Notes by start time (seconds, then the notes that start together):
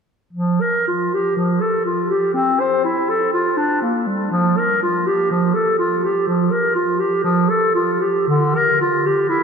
0.33 F3
0.61 A#4
0.88 F4
1.14 G4
1.37 F3
1.61 A4
1.85 F4
2.11 G4
2.34 C4
2.60 C5
2.84 E4
3.10 A4
3.33 F4
3.57 D4
3.82 A#3
4.07 G3
4.31 F3
4.58 A#4
4.83 F4
5.07 G4
5.31 F3
5.55 A4
5.79 F4
6.04 G4
6.27 F3
6.52 A#4
6.75 F4
7.00 G4
7.24 F3
7.50 A4
7.75 F4
8.02 G4
8.28 D3
8.56 A#4
8.81 F4
9.06 G4
9.29 E4